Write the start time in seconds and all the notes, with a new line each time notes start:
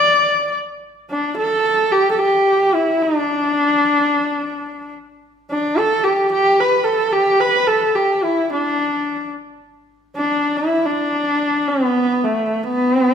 Already playing: D5
1.10 D4
1.37 A4
1.92 G4
2.11 A4
2.19 G4
2.74 E4
3.02 D4
5.51 D4
5.78 A4
6.04 G4
6.32 G4
6.60 B4
6.84 A4
7.12 G4
7.40 B4
7.67 A4
7.95 G4
8.23 E4
8.52 D4
10.16 D4
10.57 E4
10.85 D4
11.68 B3
12.24 A3
12.64 B3